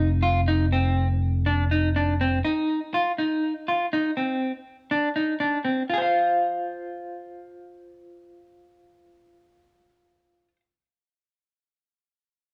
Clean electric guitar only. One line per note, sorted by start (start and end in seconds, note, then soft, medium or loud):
0.22 0.40 F4 medium
0.48 0.65 D#4 medium
0.72 1.07 C4 medium
1.47 1.64 D4 medium
1.71 1.88 D#4 medium
1.96 2.13 D4 medium
2.21 2.38 C4 medium
2.44 2.79 D#4 medium
2.94 3.11 F4 medium
3.18 3.53 D#4 medium
3.68 3.85 F4 medium
3.93 4.10 D#4 medium
4.17 4.51 C4 soft
4.91 5.08 D4 medium
5.16 5.33 D#4 medium
5.40 5.57 D4 medium
5.64 5.82 C4 medium
5.89 10.48 F4 medium
5.93 6.01 G#4 medium
5.98 10.56 C5 medium
6.02 10.60 F5 medium